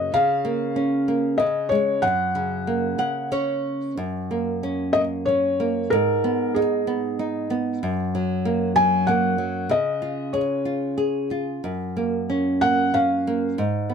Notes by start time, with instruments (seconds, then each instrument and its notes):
Already playing: nylon-string guitar C#3 A#3, felt piano D#5
0.14 nylon-string guitar C#3, felt piano F5
0.45 nylon-string guitar A#3
0.76 nylon-string guitar C#4
1.08 nylon-string guitar A#3
1.38 nylon-string guitar C#3, felt piano D#5
1.69 nylon-string guitar G#3, felt piano C#5
2.02 nylon-string guitar F#2, felt piano F#5
2.35 nylon-string guitar C#3
2.67 nylon-string guitar A#3
2.98 nylon-string guitar C#3 F#5
3.32 nylon-string guitar C#4 C#5
3.97 nylon-string guitar F#2
4.31 nylon-string guitar A#3
4.63 nylon-string guitar C#4
4.93 nylon-string guitar A#3, felt piano D#5
5.25 nylon-string guitar C#4, felt piano C#5
5.60 nylon-string guitar A#3
5.90 nylon-string guitar G#2, felt piano A#4
6.24 nylon-string guitar B3
6.55 nylon-string guitar D#4, felt piano G#4
6.87 nylon-string guitar B3
7.19 nylon-string guitar D#4
7.50 nylon-string guitar B3
7.83 nylon-string guitar F#2
8.15 nylon-string guitar F#3
8.45 nylon-string guitar A#3
8.76 nylon-string guitar F#3, felt piano G#5
9.07 nylon-string guitar A#3, felt piano F#5
9.38 nylon-string guitar F#3
9.69 nylon-string guitar C#3, felt piano D#5
10.02 nylon-string guitar F4
10.33 nylon-string guitar G#4, felt piano C#5
10.65 nylon-string guitar F4
10.98 nylon-string guitar G#4
11.31 nylon-string guitar F4
11.64 nylon-string guitar F#2
11.97 nylon-string guitar A#3
12.30 nylon-string guitar C#4
12.61 nylon-string guitar A#3, felt piano F#5
12.94 nylon-string guitar C#4, felt piano F5
13.27 nylon-string guitar A#3
13.58 nylon-string guitar G#2
13.90 nylon-string guitar B3